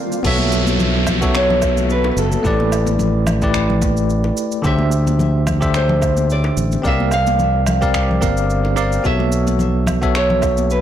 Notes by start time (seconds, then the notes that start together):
Already playing: D3 G3 A#3 C4 F4 G4 A#4 D5 F5
0.12 cabasa
0.23 B1 B3 F#4 A4 C#5 E5, kick, crash, downlifter, cabasa
0.38 high conga
0.52 cabasa
0.67 high conga, cabasa
0.80 low conga, cabasa
1.07 kick, low conga, cabasa, low woodblock
1.21 B3 F#4 A4 C#5 E5, kick, cabasa
1.35 C#5, finger snap, cabasa
1.50 low conga
1.62 kick, high bongo, cabasa, low woodblock
1.77 high conga, cabasa
1.90 B4, cabasa
2.04 high bongo
2.12 B4
2.17 F#1 A4, cabasa
2.32 high conga, cabasa
2.43 A1 A3 E4 G4 B4 D5, kick, cabasa
2.60 high conga
2.72 cabasa, low woodblock
2.87 high conga, cabasa
2.99 low conga, cabasa
3.27 low conga, cabasa, low woodblock
3.42 A3 E4 G4 B4 D5, kick, cabasa
3.54 finger snap, kick, cabasa
3.70 low conga
3.81 kick, high bongo, high conga, cabasa
3.97 cabasa
4.10 cabasa
4.24 high bongo
4.37 cabasa
4.52 cabasa
4.62 D2 D3 D4 G4 C5, kick, cabasa
4.66 E5
4.79 high conga
4.92 cabasa
5.07 high conga, cabasa
5.19 low conga, cabasa
5.47 kick, low conga, cabasa, low woodblock
5.60 D3 D4 G4 C5 E5, kick, cabasa
5.74 C5, finger snap, cabasa
5.89 low conga
6.02 kick, high bongo, cabasa, low woodblock
6.17 high conga, cabasa
6.30 D5, cabasa
6.44 high bongo
6.57 A1, cabasa
6.72 high conga, cabasa
6.82 C2 C4 G4 A#4 D5, kick, cabasa
6.86 E5 F5
7.00 high conga
7.11 F5, cabasa, low woodblock
7.27 high conga, cabasa
7.39 low conga, cabasa
7.66 low conga, cabasa, low woodblock
7.81 C4 G4 A#4 D5 F5, kick, cabasa
7.94 finger snap, kick, cabasa
8.11 low conga
8.21 G1 C4 G4 A#4 D5 F5, kick, high bongo, high conga, cabasa
8.37 cabasa
8.50 cabasa
8.65 high bongo
8.76 C4 G4 A#4 D5 F5, cabasa
8.92 cabasa
9.03 B1 B3 F#4 A4 C#5 E5, kick, cabasa
9.20 high conga
9.32 cabasa
9.47 high conga, cabasa
9.59 low conga, cabasa
9.87 kick, low conga, cabasa, low woodblock
10.02 B3 F#4 A4 C#5 E5, kick, cabasa
10.15 C#5, finger snap, cabasa
10.30 low conga
10.42 kick, high bongo, cabasa, low woodblock
10.57 high conga, cabasa
10.70 B4, cabasa